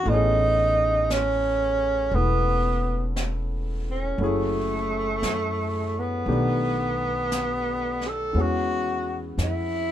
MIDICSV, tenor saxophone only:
0, 0, Header, 1, 2, 480
1, 0, Start_track
1, 0, Tempo, 1034483
1, 37, Time_signature, 4, 2, 24, 8
1, 4601, End_track
2, 0, Start_track
2, 0, Title_t, "Tenor saxophone"
2, 0, Program_c, 0, 66
2, 0, Note_on_c, 0, 66, 81
2, 42, Note_on_c, 0, 63, 81
2, 49, Note_off_c, 0, 66, 0
2, 517, Note_on_c, 0, 61, 77
2, 524, Note_off_c, 0, 63, 0
2, 997, Note_on_c, 0, 59, 71
2, 1004, Note_off_c, 0, 61, 0
2, 1474, Note_off_c, 0, 59, 0
2, 1813, Note_on_c, 0, 61, 61
2, 1959, Note_on_c, 0, 57, 74
2, 1966, Note_off_c, 0, 61, 0
2, 2778, Note_on_c, 0, 59, 65
2, 2785, Note_off_c, 0, 57, 0
2, 3749, Note_on_c, 0, 69, 67
2, 3756, Note_off_c, 0, 59, 0
2, 3901, Note_on_c, 0, 66, 76
2, 3908, Note_off_c, 0, 69, 0
2, 4291, Note_off_c, 0, 66, 0
2, 4376, Note_on_c, 0, 64, 70
2, 4601, Note_off_c, 0, 64, 0
2, 4601, End_track
0, 0, End_of_file